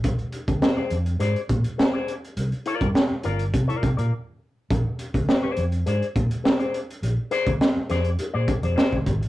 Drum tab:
HH |xxxx--xxxxxx--xx|xxxx--xxxxxx----|x-xx--xxxxxx-xxx|x-xx--xxx-xx--xx|
SD |----o-------o---|----o-----------|----o-------o---|----o-o-----o---|
BD |o--o------o-----|---o----o-o-----|o--o------o-----|---o------o--oo-|